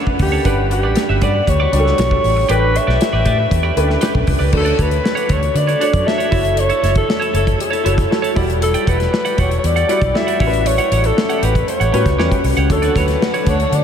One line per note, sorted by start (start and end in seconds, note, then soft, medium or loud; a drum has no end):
0.00 0.47 A3 medium
0.00 0.47 C#4 medium
0.00 0.45 D4 medium
0.00 0.45 B4 medium
0.07 muted clean electric guitar stroke soft
0.07 kick medium
0.19 0.38 D2 medium
0.19 0.68 G4 medium
0.19 muted clean electric guitar stroke soft
0.19 kick medium
0.19 open hi-hat medium
0.32 0.45 D4 soft
0.32 0.45 A4 medium
0.32 0.45 C#5 medium
0.44 0.84 G1 medium
0.44 1.08 G3 medium
0.44 1.09 D4 medium
0.44 0.61 F#4 medium
0.44 1.09 B4 medium
0.44 0.58 B4 loud
0.44 0.57 D5 medium
0.44 1.09 F#5 medium
0.44 kick loud
0.44 closed hi-hat medium
0.58 muted clean electric guitar stroke soft
0.71 1.25 G4 medium
0.71 muted clean electric guitar stroke soft
0.71 closed hi-hat medium
0.83 0.93 A1 medium
0.83 0.95 F#4 soft
0.83 0.96 B4 medium
0.83 0.96 D5 medium
0.96 muted clean electric guitar stroke soft
0.96 snare loud
0.96 closed hi-hat medium
1.09 1.18 G1 loud
1.09 1.21 F#4 medium
1.09 1.21 B4 medium
1.09 1.21 E5 medium
1.21 1.40 G2 medium
1.21 1.38 F#4 medium
1.21 1.34 B4 medium
1.21 1.33 D5 medium
1.21 1.51 D5 medium
1.21 kick medium
1.21 closed hi-hat medium
1.34 muted clean electric guitar stroke soft
1.47 1.66 D2 medium
1.47 2.52 C#5 loud
1.47 muted clean electric guitar stroke soft
1.47 kick medium
1.47 closed hi-hat medium
1.60 1.72 F#4 medium
1.60 1.72 B4 medium
1.60 1.73 D5 medium
1.72 1.91 C#2 medium
1.72 2.20 G3 medium
1.72 2.21 D4 medium
1.72 2.21 F#4 medium
1.72 1.79 G4 medium
1.72 muted clean electric guitar stroke soft
1.72 closed hi-hat medium
1.79 2.24 A4 medium
1.85 muted clean electric guitar stroke soft
1.85 snare soft
1.98 2.17 B1 medium
1.98 muted clean electric guitar stroke soft
1.98 snare medium
1.98 closed hi-hat medium
2.11 muted clean electric guitar stroke soft
2.11 kick medium
2.24 2.43 A1 medium
2.24 open hi-hat medium
2.37 muted clean electric guitar stroke soft
2.49 2.77 A1 medium
2.49 3.13 A3 medium
2.49 3.13 D4 medium
2.49 2.65 G4 medium
2.49 3.14 G4 medium
2.49 2.62 B4 medium
2.49 3.14 B4 medium
2.49 2.79 B4 loud
2.49 2.61 D5 medium
2.49 closed hi-hat medium
2.62 muted clean electric guitar stroke soft
2.75 4.29 E5 loud
2.75 muted clean electric guitar stroke soft
2.75 closed hi-hat medium
2.87 2.97 B1 medium
2.87 2.99 G4 soft
2.87 3.00 B4 medium
2.87 3.00 D5 medium
2.87 snare soft
3.00 muted clean electric guitar stroke soft
3.00 snare loud
3.00 closed hi-hat medium
3.13 3.22 A1 medium
3.13 3.24 G4 soft
3.13 3.25 B4 medium
3.13 3.25 D5 medium
3.25 3.45 A2 medium
3.25 3.41 G4 medium
3.25 3.39 B4 medium
3.25 3.38 D5 medium
3.25 kick medium
3.25 closed hi-hat medium
3.39 muted clean electric guitar stroke soft
3.51 3.70 E2 medium
3.51 muted clean electric guitar stroke soft
3.51 kick medium
3.51 closed hi-hat medium
3.63 3.75 G4 medium
3.63 3.75 B4 medium
3.63 3.76 D5 medium
3.76 3.95 D2 medium
3.76 4.25 A3 medium
3.76 3.83 C#4 medium
3.76 4.25 G4 medium
3.76 4.25 B4 medium
3.76 muted clean electric guitar stroke soft
3.76 closed hi-hat medium
3.83 4.28 D4 medium
3.88 muted clean electric guitar stroke soft
3.88 snare soft
4.01 4.18 G4 medium
4.01 4.14 B4 medium
4.01 4.13 D5 medium
4.01 snare medium
4.01 closed hi-hat medium
4.14 4.24 B1 medium
4.14 muted clean electric guitar stroke soft
4.14 kick medium
4.27 4.37 C2 medium
4.27 muted clean electric guitar stroke soft
4.27 kick medium
4.27 open hi-hat medium
4.39 4.50 C#2 medium
4.39 4.52 G4 soft
4.39 4.53 B4 soft
4.39 4.52 D5 medium
4.52 4.72 D2 medium
4.52 5.17 A3 medium
4.52 5.17 D4 medium
4.52 5.17 F#4 medium
4.52 4.60 B4 medium
4.52 muted clean electric guitar stroke soft
4.52 kick medium
4.52 crash medium
4.57 4.83 A4 medium
4.57 5.21 C#5 medium
4.65 4.76 D4 medium
4.65 4.77 F#4 medium
4.65 4.79 D5 medium
4.65 closed hi-hat medium
4.77 4.98 D2 medium
4.77 4.91 D4 medium
4.77 4.90 F#4 medium
4.77 4.89 C#5 medium
4.77 kick medium
4.77 closed hi-hat medium
4.82 5.34 B4 medium
4.90 muted clean electric guitar stroke soft
4.90 closed hi-hat soft
5.03 muted clean electric guitar stroke soft
5.03 snare loud
5.15 5.27 D4 medium
5.15 5.28 F#4 medium
5.15 5.29 C#5 medium
5.15 closed hi-hat medium
5.28 5.49 D2 medium
5.28 5.42 D4 medium
5.28 5.41 F#4 medium
5.28 5.40 C#5 medium
5.28 kick medium
5.28 closed hi-hat medium
5.32 5.58 C#5 medium
5.41 muted clean electric guitar stroke soft
5.41 closed hi-hat soft
5.55 5.74 D3 medium
5.55 6.09 D5 medium
5.55 muted clean electric guitar stroke soft
5.55 closed hi-hat medium
5.67 5.79 D4 soft
5.67 5.80 F#4 medium
5.67 5.80 C#5 medium
5.67 closed hi-hat medium
5.80 5.96 A3 medium
5.80 5.97 D4 medium
5.80 5.97 F#4 medium
5.80 5.93 F#4 medium
5.80 5.97 C#5 medium
5.80 5.92 C#5 medium
5.80 closed hi-hat medium
5.93 6.03 F#2 medium
5.93 muted clean electric guitar stroke soft
5.93 kick medium
5.93 closed hi-hat medium
6.05 6.29 A3 medium
6.05 6.32 D4 medium
6.05 6.30 F#4 medium
6.05 6.30 C#5 medium
6.05 6.61 E5 loud
6.05 muted clean electric guitar stroke soft
6.05 snare medium
6.18 6.31 D4 medium
6.18 6.32 F#4 medium
6.18 6.31 C#5 medium
6.18 closed hi-hat medium
6.30 6.70 F#1 medium
6.30 7.13 A3 medium
6.30 7.13 E4 medium
6.30 6.48 E4 medium
6.30 7.13 F#4 medium
6.30 6.44 A4 medium
6.30 7.14 C#5 medium
6.30 6.43 C#5 medium
6.30 kick loud
6.30 open hi-hat medium
6.44 muted clean electric guitar stroke soft
6.44 closed hi-hat soft
6.56 6.97 C#5 loud
6.56 muted clean electric guitar stroke soft
6.56 closed hi-hat medium
6.69 6.81 E4 medium
6.69 6.82 A4 medium
6.69 6.83 C#5 medium
6.69 closed hi-hat soft
6.82 7.02 F#1 loud
6.82 6.95 E4 medium
6.82 6.95 A4 medium
6.82 6.94 C#5 medium
6.82 snare soft
6.82 closed hi-hat medium
6.95 7.32 A4 medium
6.95 muted clean electric guitar stroke soft
6.95 kick medium
6.95 closed hi-hat soft
7.08 muted clean electric guitar stroke soft
7.08 snare loud
7.20 7.32 E4 medium
7.20 7.33 A4 medium
7.20 7.34 C#5 medium
7.20 closed hi-hat medium
7.33 7.53 F#1 medium
7.33 7.46 E4 medium
7.33 7.46 A4 medium
7.33 7.59 A4 medium
7.33 7.44 C#5 medium
7.33 closed hi-hat medium
7.46 muted clean electric guitar stroke soft
7.46 kick medium
7.46 closed hi-hat soft
7.59 8.33 A4 medium
7.59 muted clean electric guitar stroke soft
7.59 closed hi-hat medium
7.70 7.83 E4 medium
7.70 7.83 A4 medium
7.70 7.84 C#5 medium
7.70 closed hi-hat medium
7.84 8.04 F#1 medium
7.84 8.01 A3 medium
7.84 8.00 E4 medium
7.84 8.01 E4 medium
7.84 8.01 F#4 medium
7.84 7.97 A4 medium
7.84 8.01 C#5 medium
7.84 7.96 C#5 medium
7.84 closed hi-hat medium
7.97 muted clean electric guitar stroke soft
7.97 kick medium
7.97 snare soft
7.97 closed hi-hat medium
8.09 8.36 A3 medium
8.09 8.34 E4 medium
8.09 8.35 F#4 medium
8.09 8.36 C#5 medium
8.09 muted clean electric guitar stroke soft
8.09 snare medium
8.22 8.40 E4 medium
8.22 8.35 A4 medium
8.22 8.36 C#5 medium
8.22 closed hi-hat medium
8.35 8.74 E1 medium
8.35 9.18 G3 medium
8.35 9.18 E4 medium
8.35 9.18 F#4 medium
8.35 8.48 G4 medium
8.35 8.48 D5 medium
8.35 9.18 D5 medium
8.35 8.47 F#5 medium
8.35 kick loud
8.35 open hi-hat medium
8.49 muted clean electric guitar stroke soft
8.49 closed hi-hat medium
8.62 8.90 A4 medium
8.62 muted clean electric guitar stroke soft
8.62 closed hi-hat loud
8.74 8.85 G4 medium
8.74 8.86 D5 medium
8.74 8.88 G5 medium
8.74 closed hi-hat medium
8.87 9.06 E1 loud
8.87 8.99 G4 medium
8.87 9.42 B4 loud
8.87 8.99 D5 medium
8.87 8.98 F#5 medium
8.87 kick medium
8.87 closed hi-hat medium
8.99 muted clean electric guitar stroke soft
8.99 snare soft
8.99 closed hi-hat soft
9.12 muted clean electric guitar stroke soft
9.12 snare loud
9.25 9.36 G4 medium
9.25 9.37 D5 medium
9.25 9.38 F#5 medium
9.25 closed hi-hat medium
9.37 9.57 E1 medium
9.37 9.50 G4 medium
9.37 9.58 C#5 medium
9.37 9.51 D5 medium
9.37 9.50 F#5 medium
9.37 kick medium
9.37 closed hi-hat medium
9.51 muted clean electric guitar stroke soft
9.51 closed hi-hat soft
9.59 9.67 C#5 medium
9.64 9.83 E2 medium
9.64 10.18 D5 loud
9.64 muted clean electric guitar stroke soft
9.64 closed hi-hat medium
9.76 9.88 G4 soft
9.76 9.89 D5 medium
9.76 9.89 F#5 medium
9.76 closed hi-hat medium
9.88 10.05 G3 medium
9.88 10.05 E4 medium
9.88 10.05 F#4 medium
9.88 10.05 G4 medium
9.88 10.05 D5 medium
9.88 10.02 D5 medium
9.88 10.01 F#5 medium
9.88 closed hi-hat medium
10.02 10.11 B1 medium
10.02 muted clean electric guitar stroke soft
10.02 kick medium
10.02 closed hi-hat soft
10.14 10.38 G3 medium
10.14 10.40 E4 medium
10.14 10.39 F#4 medium
10.14 10.40 D5 medium
10.14 10.68 E5 loud
10.14 muted clean electric guitar stroke soft
10.14 snare medium
10.27 10.38 G4 medium
10.27 10.40 D5 medium
10.27 10.40 F#5 medium
10.27 closed hi-hat medium
10.39 10.78 A1 loud
10.39 11.22 G3 medium
10.39 11.22 C#4 medium
10.39 11.22 F#4 medium
10.39 10.56 G4 medium
10.39 10.47 A4 medium
10.39 10.53 C#5 medium
10.39 10.51 F#5 medium
10.39 kick loud
10.39 open hi-hat medium
10.47 11.25 B4 medium
10.53 muted clean electric guitar stroke soft
10.53 closed hi-hat medium
10.65 11.08 C#5 loud
10.65 muted clean electric guitar stroke soft
10.65 closed hi-hat loud
10.78 10.90 G4 medium
10.78 10.91 C#5 medium
10.78 10.92 F#5 medium
10.78 closed hi-hat medium
10.91 11.10 A1 loud
10.91 11.04 G4 medium
10.91 11.04 C#5 medium
10.91 11.03 F#5 medium
10.91 closed hi-hat medium
11.04 11.46 A4 medium
11.04 muted clean electric guitar stroke soft
11.04 closed hi-hat soft
11.17 muted clean electric guitar stroke soft
11.17 snare loud
11.29 11.41 G4 medium
11.29 11.42 C#5 medium
11.29 11.42 F#5 medium
11.29 closed hi-hat medium
11.42 11.61 A1 medium
11.42 11.55 G4 medium
11.42 11.68 B4 medium
11.42 11.55 C#5 medium
11.42 11.54 F#5 medium
11.42 closed hi-hat medium
11.55 muted clean electric guitar stroke medium
11.55 kick medium
11.55 closed hi-hat soft
11.68 12.41 C#5 medium
11.68 muted clean electric guitar stroke soft
11.68 closed hi-hat medium
11.80 11.90 A1 medium
11.80 11.91 G4 medium
11.80 11.93 C#5 medium
11.80 11.93 F#5 medium
11.80 closed hi-hat medium
11.92 12.03 A2 medium
11.92 12.09 G3 medium
11.92 12.09 C#4 medium
11.92 12.09 F#4 medium
11.92 12.09 G4 medium
11.92 12.10 B4 medium
11.92 12.06 C#5 medium
11.92 12.05 F#5 medium
11.92 closed hi-hat medium
12.06 12.15 C#2 medium
12.06 muted clean electric guitar stroke soft
12.06 kick medium
12.06 snare soft
12.06 closed hi-hat medium
12.18 12.28 E2 medium
12.18 12.51 G3 medium
12.18 12.51 C#4 medium
12.18 12.51 F#4 medium
12.18 12.35 G4 medium
12.18 12.51 B4 medium
12.18 12.31 C#5 medium
12.18 12.30 F#5 medium
12.18 snare medium
12.31 muted clean electric guitar stroke soft
12.31 kick medium
12.31 closed hi-hat medium
12.44 12.54 C2 medium
12.44 muted clean electric guitar stroke soft
12.44 open hi-hat medium
12.57 12.66 C#2 medium
12.57 12.70 G4 medium
12.57 12.70 C#5 medium
12.57 12.70 F#5 medium
12.57 closed hi-hat medium
12.69 12.89 D2 medium
12.69 13.84 D3 medium
12.69 13.84 F#3 medium
12.69 13.34 A3 medium
12.69 13.84 A3 medium
12.69 13.34 D4 medium
12.69 13.84 D4 medium
12.69 13.34 F#4 medium
12.69 13.00 A4 medium
12.69 13.34 C#5 medium
12.69 13.84 F#5 medium
12.69 muted clean electric guitar stroke soft
12.69 kick loud
12.69 closed hi-hat loud
12.82 12.94 D4 medium
12.82 12.95 F#4 medium
12.82 12.96 D5 medium
12.82 closed hi-hat medium
12.95 13.14 D2 medium
12.95 13.08 D4 medium
12.95 13.08 F#4 medium
12.95 13.51 B4 medium
12.95 13.07 C#5 medium
12.95 kick medium
12.95 snare soft
12.95 closed hi-hat medium
13.08 muted clean electric guitar stroke medium
13.08 snare soft
13.08 closed hi-hat soft
13.21 muted clean electric guitar stroke soft
13.21 snare loud
13.34 13.45 D4 medium
13.34 13.46 F#4 medium
13.34 13.47 C#5 medium
13.34 closed hi-hat medium
13.46 13.65 D2 medium
13.46 13.59 D4 medium
13.46 13.59 F#4 medium
13.46 13.58 C#5 medium
13.46 13.76 C#5 medium
13.46 kick medium
13.46 closed hi-hat medium
13.59 muted clean electric guitar stroke soft
13.59 closed hi-hat soft
13.72 13.84 D3 medium
13.72 13.84 D5 loud
13.72 muted clean electric guitar stroke soft
13.72 closed hi-hat medium